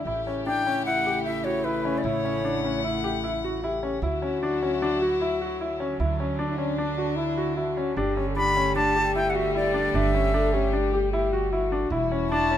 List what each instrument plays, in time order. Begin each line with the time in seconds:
0.04 upright bass A1, string section C#3 A3 G4, french horn E4, grand piano E4
0.27 grand piano C#4
0.47 grand piano D4, flute G5
0.66 grand piano C#4
0.85 grand piano E4, flute F#5
1.06 grand piano G4
1.24 grand piano E4, flute E5
1.44 grand piano F#4, flute C#5
1.64 grand piano E4, flute B4
1.85 grand piano C#4
1.98 flute D5
2.04 upright bass A1, grand piano E4, flute C#5, string section F#5
2.25 grand piano C#4
2.44 grand piano D4
2.64 grand piano C#4
2.84 grand piano E4
3.04 grand piano G4
3.24 grand piano E4
3.44 grand piano F#4
3.63 grand piano E4, french horn G4
3.83 grand piano C#4
4.02 upright bass D2, string section D3 F#3 E4, grand piano E4, french horn F#4
4.22 grand piano C#4
4.43 grand piano D4
4.63 grand piano C#4
4.82 grand piano D4
5.02 grand piano F#4
5.21 grand piano E4
5.41 grand piano F#4
5.61 grand piano E4
5.80 grand piano C#4
5.99 upright bass D2, string section D4, grand piano E4
6.20 grand piano C#4
6.39 grand piano D4, french horn D4
6.52 french horn E4
6.57 grand piano C#4, french horn D4
6.78 grand piano D4
6.98 grand piano F#4
7.17 french horn E4, grand piano E4
7.38 grand piano F#4
7.56 grand piano E4, french horn F#4
7.77 grand piano C#4
7.96 upright bass G1, string section G3 A3, grand piano D4, french horn G4
8.17 grand piano C#4
8.30 french horn A4
8.36 grand piano D4, french horn G4, flute B5
8.57 grand piano C#4
8.76 grand piano D4, flute A5
8.96 grand piano G4
9.16 grand piano E4, flute G5
9.30 flute F#5
9.35 grand piano F#4, flute E5
9.55 grand piano E4, flute D5
9.74 grand piano D4
9.94 upright bass G1, grand piano D4, flute E5
10.14 grand piano C#4
10.34 grand piano D4, french horn A4
10.53 grand piano C#4, french horn G4
10.73 grand piano D4
10.93 grand piano G4
11.13 grand piano E4, french horn G4
11.33 grand piano F#4
11.52 grand piano E4, french horn F#4
11.72 grand piano D4
11.90 upright bass E1, string section E3 G3 F#4, grand piano E4, french horn E4
12.12 grand piano C#4
12.30 grand piano D4, flute A5
12.51 grand piano C#4